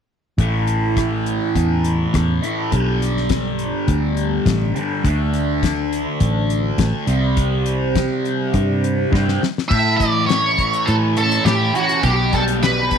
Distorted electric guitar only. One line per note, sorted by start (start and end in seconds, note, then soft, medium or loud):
0.39 2.41 A2 medium
0.39 2.42 E3 medium
0.39 2.41 A3 medium
2.42 2.71 A2 medium
2.42 2.71 E3 medium
2.42 2.70 A3 medium
2.71 4.74 G2 medium
2.71 4.75 D3 medium
2.71 4.74 G3 medium
4.75 5.04 G2 medium
4.75 5.03 D3 medium
4.75 5.03 G3 medium
5.04 7.07 D3 medium
5.04 7.07 A3 medium
5.04 7.08 D4 medium
7.07 9.10 C3 medium
7.07 9.10 G3 medium
7.07 9.11 C4 medium
9.12 9.40 C3 medium
9.12 9.40 G3 medium
9.12 9.41 C4 medium
9.69 11.16 A2 medium
9.99 10.27 E3 medium
10.28 10.85 E3 medium
10.58 12.04 A3 medium
10.87 12.02 E3 medium
11.17 11.72 C#4 medium
11.46 12.04 E4 medium
11.74 12.03 C#4 medium
12.02 12.59 B2 medium
12.32 12.89 G3 medium
12.60 12.98 B2 medium
12.90 12.98 G3 medium